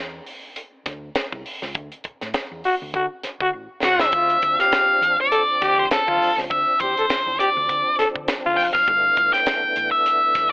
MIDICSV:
0, 0, Header, 1, 7, 480
1, 0, Start_track
1, 0, Tempo, 593472
1, 1421, Time_signature, 4, 2, 24, 8
1, 8510, End_track
2, 0, Start_track
2, 0, Title_t, "Lead electric guitar"
2, 0, Program_c, 0, 29
2, 3113, Note_on_c, 0, 78, 101
2, 3234, Note_off_c, 0, 78, 0
2, 3237, Note_on_c, 0, 76, 103
2, 3687, Note_off_c, 0, 76, 0
2, 3722, Note_on_c, 0, 77, 98
2, 4169, Note_off_c, 0, 77, 0
2, 4210, Note_on_c, 0, 74, 94
2, 4652, Note_off_c, 0, 74, 0
2, 4686, Note_on_c, 0, 72, 89
2, 4726, Note_off_c, 0, 72, 0
2, 4790, Note_on_c, 0, 69, 88
2, 5135, Note_off_c, 0, 69, 0
2, 5262, Note_on_c, 0, 76, 99
2, 5486, Note_off_c, 0, 76, 0
2, 5506, Note_on_c, 0, 72, 86
2, 5951, Note_off_c, 0, 72, 0
2, 5981, Note_on_c, 0, 74, 80
2, 6427, Note_off_c, 0, 74, 0
2, 6929, Note_on_c, 0, 79, 109
2, 6970, Note_off_c, 0, 79, 0
2, 7064, Note_on_c, 0, 77, 106
2, 7545, Note_off_c, 0, 77, 0
2, 7548, Note_on_c, 0, 79, 105
2, 8014, Note_off_c, 0, 79, 0
2, 8018, Note_on_c, 0, 76, 100
2, 8466, Note_off_c, 0, 76, 0
2, 8510, End_track
3, 0, Start_track
3, 0, Title_t, "Trombone"
3, 0, Program_c, 1, 57
3, 2146, Note_on_c, 1, 66, 93
3, 2231, Note_off_c, 1, 66, 0
3, 2389, Note_on_c, 1, 66, 85
3, 2474, Note_off_c, 1, 66, 0
3, 2762, Note_on_c, 1, 66, 108
3, 2829, Note_off_c, 1, 66, 0
3, 3111, Note_on_c, 1, 66, 106
3, 3313, Note_off_c, 1, 66, 0
3, 3348, Note_on_c, 1, 65, 92
3, 3540, Note_off_c, 1, 65, 0
3, 3719, Note_on_c, 1, 67, 91
3, 4045, Note_off_c, 1, 67, 0
3, 4302, Note_on_c, 1, 69, 88
3, 4384, Note_off_c, 1, 69, 0
3, 4543, Note_on_c, 1, 67, 116
3, 4736, Note_off_c, 1, 67, 0
3, 4916, Note_on_c, 1, 65, 104
3, 5109, Note_off_c, 1, 65, 0
3, 5515, Note_on_c, 1, 67, 82
3, 5617, Note_off_c, 1, 67, 0
3, 5648, Note_on_c, 1, 69, 77
3, 5708, Note_off_c, 1, 69, 0
3, 5986, Note_on_c, 1, 67, 84
3, 6065, Note_off_c, 1, 67, 0
3, 6462, Note_on_c, 1, 69, 99
3, 6541, Note_off_c, 1, 69, 0
3, 6841, Note_on_c, 1, 65, 101
3, 7029, Note_off_c, 1, 65, 0
3, 8510, End_track
4, 0, Start_track
4, 0, Title_t, "Tonewheel organ"
4, 0, Program_c, 2, 16
4, 3337, Note_on_c, 2, 62, 65
4, 3338, Note_on_c, 2, 53, 63
4, 3338, Note_on_c, 2, 60, 59
4, 7140, Note_off_c, 2, 53, 0
4, 7140, Note_off_c, 2, 60, 0
4, 7179, Note_on_c, 2, 59, 62
4, 7182, Note_on_c, 2, 52, 66
4, 7186, Note_on_c, 2, 57, 62
4, 8510, Note_off_c, 2, 52, 0
4, 8510, Note_off_c, 2, 57, 0
4, 8510, Note_off_c, 2, 59, 0
4, 8510, Note_off_c, 2, 62, 0
4, 8510, End_track
5, 0, Start_track
5, 0, Title_t, "Fingered electric bass"
5, 0, Program_c, 3, 33
5, 0, Note_on_c, 3, 40, 81
5, 152, Note_off_c, 3, 40, 0
5, 694, Note_on_c, 3, 38, 106
5, 877, Note_off_c, 3, 38, 0
5, 1069, Note_on_c, 3, 36, 95
5, 1151, Note_off_c, 3, 36, 0
5, 1312, Note_on_c, 3, 37, 103
5, 1393, Note_off_c, 3, 37, 0
5, 1416, Note_on_c, 3, 38, 110
5, 1519, Note_off_c, 3, 38, 0
5, 1797, Note_on_c, 3, 45, 88
5, 1877, Note_off_c, 3, 45, 0
5, 2033, Note_on_c, 3, 40, 69
5, 2115, Note_off_c, 3, 40, 0
5, 2279, Note_on_c, 3, 38, 83
5, 2359, Note_off_c, 3, 38, 0
5, 2377, Note_on_c, 3, 50, 114
5, 2481, Note_off_c, 3, 50, 0
5, 2752, Note_on_c, 3, 50, 90
5, 2835, Note_off_c, 3, 50, 0
5, 2856, Note_on_c, 3, 33, 81
5, 2961, Note_off_c, 3, 33, 0
5, 3095, Note_on_c, 3, 36, 98
5, 3228, Note_off_c, 3, 36, 0
5, 3228, Note_on_c, 3, 37, 85
5, 3312, Note_off_c, 3, 37, 0
5, 3337, Note_on_c, 3, 38, 107
5, 3521, Note_off_c, 3, 38, 0
5, 3580, Note_on_c, 3, 38, 75
5, 3684, Note_off_c, 3, 38, 0
5, 4056, Note_on_c, 3, 40, 83
5, 4161, Note_off_c, 3, 40, 0
5, 4543, Note_on_c, 3, 38, 95
5, 4725, Note_off_c, 3, 38, 0
5, 4918, Note_on_c, 3, 50, 90
5, 4998, Note_off_c, 3, 50, 0
5, 5154, Note_on_c, 3, 37, 93
5, 5235, Note_off_c, 3, 37, 0
5, 5264, Note_on_c, 3, 38, 110
5, 5365, Note_off_c, 3, 38, 0
5, 5504, Note_on_c, 3, 40, 80
5, 5605, Note_off_c, 3, 40, 0
5, 5876, Note_on_c, 3, 40, 73
5, 5955, Note_off_c, 3, 40, 0
5, 6120, Note_on_c, 3, 38, 86
5, 6198, Note_off_c, 3, 38, 0
5, 6220, Note_on_c, 3, 50, 96
5, 6321, Note_off_c, 3, 50, 0
5, 6594, Note_on_c, 3, 50, 92
5, 6673, Note_off_c, 3, 50, 0
5, 6841, Note_on_c, 3, 38, 90
5, 6917, Note_off_c, 3, 38, 0
5, 6945, Note_on_c, 3, 29, 96
5, 7043, Note_off_c, 3, 29, 0
5, 7074, Note_on_c, 3, 30, 93
5, 7152, Note_off_c, 3, 30, 0
5, 7180, Note_on_c, 3, 31, 113
5, 7358, Note_off_c, 3, 31, 0
5, 7418, Note_on_c, 3, 31, 97
5, 7517, Note_off_c, 3, 31, 0
5, 7899, Note_on_c, 3, 33, 82
5, 7997, Note_off_c, 3, 33, 0
5, 8372, Note_on_c, 3, 31, 93
5, 8510, Note_off_c, 3, 31, 0
5, 8510, End_track
6, 0, Start_track
6, 0, Title_t, "Muted fingered electric bass strokes"
6, 938, Note_on_c, 9, 29, 44
6, 1019, Note_off_c, 9, 29, 0
6, 1903, Note_on_c, 9, 29, 45
6, 1984, Note_off_c, 9, 29, 0
6, 2621, Note_on_c, 9, 29, 50
6, 2701, Note_off_c, 9, 29, 0
6, 3954, Note_on_c, 9, 29, 35
6, 4035, Note_off_c, 9, 29, 0
6, 6465, Note_on_c, 9, 29, 44
6, 6546, Note_off_c, 9, 29, 0
6, 7796, Note_on_c, 9, 29, 43
6, 7877, Note_off_c, 9, 29, 0
6, 8510, End_track
7, 0, Start_track
7, 0, Title_t, "Drums"
7, 214, Note_on_c, 9, 46, 57
7, 295, Note_off_c, 9, 46, 0
7, 454, Note_on_c, 9, 42, 83
7, 535, Note_off_c, 9, 42, 0
7, 694, Note_on_c, 9, 38, 34
7, 694, Note_on_c, 9, 42, 82
7, 697, Note_on_c, 9, 36, 100
7, 775, Note_off_c, 9, 38, 0
7, 775, Note_off_c, 9, 42, 0
7, 778, Note_off_c, 9, 36, 0
7, 931, Note_on_c, 9, 42, 84
7, 935, Note_on_c, 9, 38, 101
7, 1012, Note_off_c, 9, 42, 0
7, 1016, Note_off_c, 9, 38, 0
7, 1071, Note_on_c, 9, 36, 72
7, 1152, Note_off_c, 9, 36, 0
7, 1178, Note_on_c, 9, 46, 72
7, 1259, Note_off_c, 9, 46, 0
7, 1312, Note_on_c, 9, 38, 31
7, 1393, Note_off_c, 9, 38, 0
7, 1413, Note_on_c, 9, 42, 82
7, 1417, Note_on_c, 9, 36, 127
7, 1493, Note_off_c, 9, 42, 0
7, 1498, Note_off_c, 9, 36, 0
7, 1551, Note_on_c, 9, 42, 56
7, 1631, Note_off_c, 9, 42, 0
7, 1650, Note_on_c, 9, 42, 71
7, 1658, Note_on_c, 9, 36, 75
7, 1731, Note_off_c, 9, 42, 0
7, 1739, Note_off_c, 9, 36, 0
7, 1791, Note_on_c, 9, 38, 34
7, 1792, Note_on_c, 9, 42, 54
7, 1872, Note_off_c, 9, 38, 0
7, 1873, Note_off_c, 9, 42, 0
7, 1891, Note_on_c, 9, 42, 81
7, 1895, Note_on_c, 9, 38, 117
7, 1972, Note_off_c, 9, 42, 0
7, 1976, Note_off_c, 9, 38, 0
7, 2136, Note_on_c, 9, 46, 58
7, 2217, Note_off_c, 9, 46, 0
7, 2377, Note_on_c, 9, 36, 84
7, 2378, Note_on_c, 9, 42, 77
7, 2458, Note_off_c, 9, 36, 0
7, 2459, Note_off_c, 9, 42, 0
7, 2616, Note_on_c, 9, 38, 33
7, 2616, Note_on_c, 9, 42, 82
7, 2697, Note_off_c, 9, 38, 0
7, 2697, Note_off_c, 9, 42, 0
7, 2754, Note_on_c, 9, 36, 89
7, 2835, Note_off_c, 9, 36, 0
7, 3096, Note_on_c, 9, 38, 98
7, 3177, Note_off_c, 9, 38, 0
7, 3231, Note_on_c, 9, 38, 88
7, 3312, Note_off_c, 9, 38, 0
7, 3334, Note_on_c, 9, 42, 83
7, 3339, Note_on_c, 9, 36, 114
7, 3415, Note_off_c, 9, 42, 0
7, 3420, Note_off_c, 9, 36, 0
7, 3475, Note_on_c, 9, 42, 53
7, 3556, Note_off_c, 9, 42, 0
7, 3577, Note_on_c, 9, 42, 68
7, 3581, Note_on_c, 9, 36, 76
7, 3657, Note_off_c, 9, 42, 0
7, 3662, Note_off_c, 9, 36, 0
7, 3717, Note_on_c, 9, 38, 32
7, 3718, Note_on_c, 9, 42, 53
7, 3798, Note_off_c, 9, 38, 0
7, 3799, Note_off_c, 9, 42, 0
7, 3819, Note_on_c, 9, 42, 85
7, 3823, Note_on_c, 9, 38, 114
7, 3900, Note_off_c, 9, 42, 0
7, 3904, Note_off_c, 9, 38, 0
7, 4065, Note_on_c, 9, 42, 80
7, 4145, Note_off_c, 9, 42, 0
7, 4302, Note_on_c, 9, 42, 81
7, 4383, Note_off_c, 9, 42, 0
7, 4544, Note_on_c, 9, 38, 35
7, 4544, Note_on_c, 9, 42, 72
7, 4545, Note_on_c, 9, 36, 93
7, 4625, Note_off_c, 9, 38, 0
7, 4625, Note_off_c, 9, 42, 0
7, 4626, Note_off_c, 9, 36, 0
7, 4779, Note_on_c, 9, 42, 88
7, 4783, Note_on_c, 9, 38, 97
7, 4860, Note_off_c, 9, 42, 0
7, 4864, Note_off_c, 9, 38, 0
7, 4919, Note_on_c, 9, 36, 74
7, 5000, Note_off_c, 9, 36, 0
7, 5031, Note_on_c, 9, 46, 73
7, 5112, Note_off_c, 9, 46, 0
7, 5162, Note_on_c, 9, 38, 28
7, 5243, Note_off_c, 9, 38, 0
7, 5264, Note_on_c, 9, 36, 119
7, 5264, Note_on_c, 9, 42, 80
7, 5344, Note_off_c, 9, 42, 0
7, 5345, Note_off_c, 9, 36, 0
7, 5498, Note_on_c, 9, 42, 62
7, 5504, Note_on_c, 9, 36, 80
7, 5579, Note_off_c, 9, 42, 0
7, 5585, Note_off_c, 9, 36, 0
7, 5640, Note_on_c, 9, 42, 59
7, 5721, Note_off_c, 9, 42, 0
7, 5741, Note_on_c, 9, 42, 91
7, 5745, Note_on_c, 9, 38, 103
7, 5822, Note_off_c, 9, 42, 0
7, 5826, Note_off_c, 9, 38, 0
7, 5986, Note_on_c, 9, 42, 78
7, 6067, Note_off_c, 9, 42, 0
7, 6222, Note_on_c, 9, 36, 79
7, 6223, Note_on_c, 9, 42, 84
7, 6303, Note_off_c, 9, 36, 0
7, 6304, Note_off_c, 9, 42, 0
7, 6463, Note_on_c, 9, 38, 36
7, 6463, Note_on_c, 9, 42, 75
7, 6544, Note_off_c, 9, 38, 0
7, 6544, Note_off_c, 9, 42, 0
7, 6596, Note_on_c, 9, 36, 94
7, 6677, Note_off_c, 9, 36, 0
7, 6696, Note_on_c, 9, 42, 92
7, 6700, Note_on_c, 9, 38, 105
7, 6777, Note_off_c, 9, 42, 0
7, 6781, Note_off_c, 9, 38, 0
7, 6945, Note_on_c, 9, 46, 77
7, 7026, Note_off_c, 9, 46, 0
7, 7075, Note_on_c, 9, 36, 78
7, 7077, Note_on_c, 9, 38, 33
7, 7156, Note_off_c, 9, 36, 0
7, 7157, Note_off_c, 9, 38, 0
7, 7180, Note_on_c, 9, 36, 113
7, 7180, Note_on_c, 9, 42, 82
7, 7261, Note_off_c, 9, 36, 0
7, 7261, Note_off_c, 9, 42, 0
7, 7415, Note_on_c, 9, 42, 68
7, 7418, Note_on_c, 9, 36, 88
7, 7496, Note_off_c, 9, 42, 0
7, 7499, Note_off_c, 9, 36, 0
7, 7553, Note_on_c, 9, 38, 37
7, 7554, Note_on_c, 9, 42, 49
7, 7634, Note_off_c, 9, 38, 0
7, 7635, Note_off_c, 9, 42, 0
7, 7653, Note_on_c, 9, 42, 85
7, 7658, Note_on_c, 9, 38, 116
7, 7734, Note_off_c, 9, 42, 0
7, 7739, Note_off_c, 9, 38, 0
7, 7894, Note_on_c, 9, 42, 82
7, 7975, Note_off_c, 9, 42, 0
7, 8137, Note_on_c, 9, 42, 82
7, 8218, Note_off_c, 9, 42, 0
7, 8372, Note_on_c, 9, 38, 38
7, 8372, Note_on_c, 9, 42, 77
7, 8373, Note_on_c, 9, 36, 98
7, 8453, Note_off_c, 9, 38, 0
7, 8453, Note_off_c, 9, 42, 0
7, 8454, Note_off_c, 9, 36, 0
7, 8510, End_track
0, 0, End_of_file